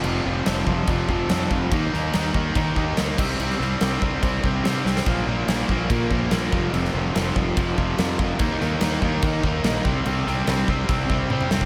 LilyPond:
<<
  \new Staff \with { instrumentName = "Distorted electric guitar" } { \clef bass \time 4/4 \key c \minor \tempo 4 = 144 <f, c f>8 <f, c f>8 <f, c f>8 <f, c f>8 <f, c f>8 <f, c f>8 <f, c f>8 <f, c f>8 | <ees bes ees'>8 <ees bes ees'>8 <ees bes ees'>8 <ees bes ees'>8 <ees bes ees'>8 <ees bes ees'>8 <ees bes ees'>8 <c g c'>8 | <c g c'>8 <c g c'>8 <c g c'>8 <c g c'>8 <c g c'>8 <c g c'>8 <c g c'>8 <c g c'>8 | <bes, f bes>8 <bes, f bes>8 <bes, f bes>8 <bes, f bes>8 <bes, f bes>8 <bes, f bes>8 <bes, f bes>8 <f, c f>8 |
<f, c f>8 <f, c f>8 <f, c f>8 <f, c f>8 <f, c f>8 <f, c f>8 <f, c f>8 <f, c f>8 | <ees bes ees'>8 <ees bes ees'>8 <ees bes ees'>8 <ees bes ees'>8 <ees bes ees'>8 <ees bes ees'>8 <ees bes ees'>8 <c g c'>8 | <c g c'>8 <c g c'>8 <c g c'>8 <c g c'>8 <c g c'>8 <c g c'>8 <c g c'>8 <c g c'>8 | }
  \new Staff \with { instrumentName = "Overdriven electric guitar" } { \clef bass \time 4/4 \key c \minor <f, c f>8 <f, c f>8 <f, c f>8 <f, c f>8 <f, c f>8 <f, c f>8 <f, c f>8 <f, c f>8 | <ees bes ees'>8 <ees bes ees'>8 <ees bes ees'>8 <ees bes ees'>8 <ees bes ees'>8 <ees bes ees'>8 <ees bes ees'>8 <c g c'>8 | <c g c'>8 <c g c'>8 <c g c'>8 <c g c'>8 <c g c'>8 <c g c'>8 <c g c'>8 <c g c'>8 | <bes, f bes>8 <bes, f bes>8 <bes, f bes>8 <bes, f bes>8 <bes, f bes>8 <bes, f bes>8 <bes, f bes>8 <f, c f>8 |
<f, c f>8 <f, c f>8 <f, c f>8 <f, c f>8 <f, c f>8 <f, c f>8 <f, c f>8 <f, c f>8 | <ees bes ees'>8 <ees bes ees'>8 <ees bes ees'>8 <ees bes ees'>8 <ees bes ees'>8 <ees bes ees'>8 <ees bes ees'>8 <c g c'>8 | <c g c'>8 <c g c'>8 <c g c'>8 <c g c'>8 <c g c'>8 <c g c'>8 <c g c'>8 <c g c'>8 | }
  \new Staff \with { instrumentName = "Fingered electric bass" } { \clef bass \time 4/4 \key c \minor f,,8 f,,8 f,,8 f,,8 f,,8 f,,8 f,8 f,,8 | ees,8 ees,8 ees,8 ees,8 ees8 ees,8 d,8 c,8 | c,8 c,8 c,8 c,8 c,8 c,8 c8 c,8 | bes,,8 bes,,8 bes,,8 bes,,8 bes,8 bes,,8 bes,,8 f,,8 |
f,,8 f,,8 f,,8 f,,8 f,,8 f,,8 f,8 f,,8 | ees,8 ees,8 ees,8 ees,8 ees8 ees,8 bes,,8 c,8 | c,8 c,8 c,8 c,8 c,8 c,8 c8 c,8 | }
  \new DrumStaff \with { instrumentName = "Drums" } \drummode { \time 4/4 cymc4 <cymc sn>8 bd8 <cymc bd>8 bd8 <cymc sn>8 bd8 | <cymc bd>8 sn8 <cymc sn>8 bd8 <cymc bd>8 bd8 <cymc sn>8 <cymc bd>8 | cymc16 sn16 sn8 <cymc sn>8 bd8 <cymc bd>8 bd8 <cymc sn>8 sn16 sn16 | <cymc bd>4 <cymc sn>8 bd8 <cymc bd>8 bd8 <cymc sn>8 bd8 |
cymc16 sn8. <cymc sn>8 bd8 <cymc bd>8 bd8 <cymc sn>8 bd8 | <cymc bd>8 sn8 <cymc sn>8 bd8 <cymc bd>8 bd8 <cymc sn>8 bd8 | cymc8 sn8 <cymc sn>8 bd8 <cymc bd>8 bd8 tommh16 toml16 sn16 bd16 | }
>>